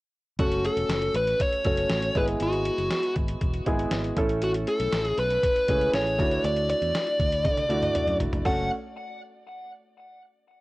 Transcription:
0.39 F#1 A3 C#4 F#4 A4, kick, closed hi-hat
0.52 closed hi-hat
0.64 A4, closed hi-hat
0.76 E1, closed hi-hat
0.89 F#1, snare, closed hi-hat
1.02 closed hi-hat
1.14 A1 B4, closed hi-hat
1.27 closed hi-hat
1.40 C#5, kick, closed hi-hat
1.53 closed hi-hat
1.64 F#1 A3 C#4 F#4 A4 C#5, kick, closed hi-hat
1.77 closed hi-hat
1.90 A1, snare, closed hi-hat
2.02 closed hi-hat
2.15 G#1 G#3 B3 E4 G#4 B4, kick, closed hi-hat
2.28 closed hi-hat
2.40 G#1 F#4, closed hi-hat
2.53 closed hi-hat
2.65 closed hi-hat
2.78 F#1, closed hi-hat
2.90 snare, closed hi-hat
3.03 closed hi-hat
3.16 G#1, kick, closed hi-hat
3.28 closed hi-hat
3.41 E1, kick, closed hi-hat
3.54 closed hi-hat
3.66 G#1 G#3 B3 E4 G#4, kick, closed hi-hat
3.79 closed hi-hat
3.91 G#1, snare, closed hi-hat
4.04 closed hi-hat
4.17 A1 A3 C#4 E4 A4, kick, closed hi-hat
4.29 closed hi-hat
4.42 F#4, closed hi-hat
4.54 closed hi-hat
4.67 A4, closed hi-hat
4.80 B1, closed hi-hat
4.93 A1, snare, closed hi-hat
5.05 G#4, closed hi-hat
5.18 B1 B4, closed hi-hat
5.30 closed hi-hat
5.43 kick, closed hi-hat
5.56 closed hi-hat
5.68 C#2 A3 C#4 E4 G#4, kick, closed hi-hat
5.81 closed hi-hat
5.93 A1 C#5, snare, closed hi-hat
6.07 closed hi-hat
6.18 D2 A3 D4 E4 F#4, kick, closed hi-hat
6.31 closed hi-hat
6.44 D2 D5, closed hi-hat
6.56 closed hi-hat
6.69 D5, closed hi-hat
6.81 E2, closed hi-hat
6.95 snare, closed hi-hat
7.07 closed hi-hat
7.19 D2, kick, closed hi-hat
7.32 closed hi-hat
7.44 D3, kick, closed hi-hat, high tom
7.57 closed hi-hat, high tom
7.69 D2 A3 D4 E4 F#4, closed hi-hat
7.82 closed hi-hat, mid tom
7.95 closed hi-hat, mid tom
8.07 F#2, closed hi-hat
8.20 E1, closed hi-hat, floor tom
8.33 F1, closed hi-hat, floor tom
8.45 F#1 A3 C#4 F#4 A4 F#5, kick, open hi-hat

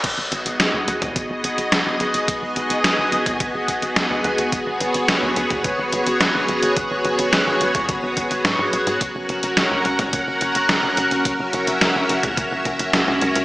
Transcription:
0.04 G#1 B3 F#4 G#4 D#5, kick, closed hi-hat, crash
0.18 G#1
0.32 G#1, closed hi-hat
0.46 G#1, closed hi-hat
0.60 F#1, snare, closed hi-hat
0.74 D#2
0.88 D#2, closed hi-hat
1.02 D#2, kick, closed hi-hat, mid tom
1.16 G#1, kick, closed hi-hat
1.30 G#1
1.44 G#1, closed hi-hat
1.58 G#1, closed hi-hat
1.72 G#1, snare, closed hi-hat
1.86 G#1
2.00 G#1, closed hi-hat
2.14 G#1, closed hi-hat
2.28 G#1, kick, closed hi-hat
2.42 G#1
2.56 G#1, closed hi-hat
2.70 G#1, closed hi-hat
2.84 G#1, snare, closed hi-hat
2.98 G#1
3.12 G#1, closed hi-hat
3.26 G#1, kick, closed hi-hat, mid tom
3.40 G#1, kick, closed hi-hat
3.54 G#1
3.68 G#1, kick, closed hi-hat
3.82 G#1, closed hi-hat
3.96 D#2, snare, closed hi-hat
4.10 D#2
4.24 D#2, closed hi-hat
4.38 D#2, closed hi-hat
4.52 G#1 C#5, kick, closed hi-hat
4.66 G#1
4.80 G#1, closed hi-hat
4.94 G#1, closed hi-hat
5.08 F#1, snare, closed hi-hat
5.22 D#2
5.36 D#2, closed hi-hat
5.50 D#2, kick, closed hi-hat, mid tom
5.64 G#1, kick, closed hi-hat
5.78 G#1
5.92 G#1, closed hi-hat
6.07 G#1, closed hi-hat
6.20 G#1, snare, closed hi-hat
6.34 G#1
6.48 G#1, closed hi-hat
6.62 G#1, closed hi-hat
6.77 G#1, kick, closed hi-hat
6.91 G#1
7.05 G#1, closed hi-hat
7.19 G#1, closed hi-hat
7.33 G#1, snare, closed hi-hat
7.47 G#1
7.61 G#1, closed hi-hat
7.75 G#1, kick, closed hi-hat, mid tom
7.89 G#1, kick, closed hi-hat
8.03 G#1
8.17 G#1, kick, closed hi-hat
8.31 G#1, closed hi-hat
8.45 G#2, snare, closed hi-hat
8.59 G#2
8.73 B1, closed hi-hat
8.87 G#2, closed hi-hat
9.01 F#1 C#4 A#4 F#5, kick, closed hi-hat
9.15 F#1
9.29 F#1, closed hi-hat
9.43 F#1, closed hi-hat
9.57 E1, snare, closed hi-hat
9.71 C#2
9.85 C#2, closed hi-hat
9.99 C#2, kick, closed hi-hat, mid tom
10.13 F#1, kick, closed hi-hat
10.27 F#1
10.41 F#1, closed hi-hat
10.55 F#1, closed hi-hat
10.69 F#1, snare, closed hi-hat
10.83 F#1
10.97 F#1, closed hi-hat
11.11 F#1, closed hi-hat
11.25 F#1 E5, kick, closed hi-hat
11.39 F#1
11.53 F#1, closed hi-hat
11.67 F#1, closed hi-hat
11.81 F#1, snare, closed hi-hat
11.95 F#1
12.09 F#1, closed hi-hat
12.23 F#1, kick, closed hi-hat, mid tom
12.37 F#1, kick, closed hi-hat
12.51 F#1
12.65 F#1, kick, closed hi-hat
12.79 F#1, closed hi-hat
12.93 C#2, snare, closed hi-hat
13.08 C#2
13.22 C#2, closed hi-hat
13.35 C#2, closed hi-hat

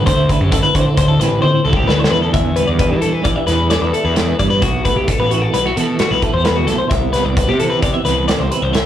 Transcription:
0.06 D2 D3 A3 C4 E4 C5, kick, closed hi-hat
0.29 A3 B4, kick, closed hi-hat
0.41 F#2 G4
0.52 E4 A4, kick, closed hi-hat
0.63 B4
0.75 D3 C4 C5, kick, closed hi-hat
0.86 A4
0.97 D2 A2 C5, kick, closed hi-hat
1.08 A4
1.20 A1 C4 B4, snare, closed hi-hat
1.42 E4 C5, high tom
1.65 C2 E4 A4
1.73 G4, kick
1.88 D2 D3 B4, snare
1.99 C5
2.04 snare
2.11 E2 A3 B4
2.22 A4
2.34 E2 E5, kick, closed hi-hat
2.56 G3 B4, closed hi-hat
2.67 E2 D5
2.79 D4 B4, kick, closed hi-hat
2.90 E3 G4
3.01 E3 A4, closed hi-hat
3.13 B4
3.24 E3 G3 D5, kick, closed hi-hat
3.36 E5
3.47 E2 E3 B4, snare, closed hi-hat
3.70 D4 D5, snare, closed hi-hat
3.82 E2 B4
3.93 E4 A4, closed hi-hat
4.05 E2 B4
4.16 E2 D5, snare, closed hi-hat
4.28 B4
4.39 G2 G3 D5, kick, closed hi-hat
4.50 B4
4.62 B1 B2 F#4, kick, closed hi-hat
4.85 A3 B4, kick, closed hi-hat
4.96 B1 G4
5.08 B3 A4, kick, closed hi-hat
5.19 A1 B4
5.31 E3 F#4, closed hi-hat
5.42 A4
5.53 B1 G3 B4, closed hi-hat
5.66 A3 F#4
5.77 B2 E3 A4, closed hi-hat
5.99 B3 F#4, snare, closed hi-hat
6.11 B1 B4
6.22 E4 A4, kick, closed hi-hat
6.34 E2 C5
6.44 B2 B4, snare, closed hi-hat
6.56 F#4
6.67 B1 A3 A4, snare, closed hi-hat
6.78 C5
6.90 C2 C3 E5, kick, closed hi-hat
7.13 B3 B4, snare, closed hi-hat
7.25 C2 D5
7.37 C4 B4, kick, closed hi-hat
7.48 C3 G4
7.59 E3 A4, closed hi-hat
7.70 B4
7.83 C3 B3 D5, kick, closed hi-hat
7.94 E5
8.05 C2 E3 B4, snare, closed hi-hat
8.28 C4 D5, snare, closed hi-hat
8.39 C2 C5
8.51 E4 B4, closed hi-hat
8.62 C2 C5
8.73 C3 E5, snare, closed hi-hat

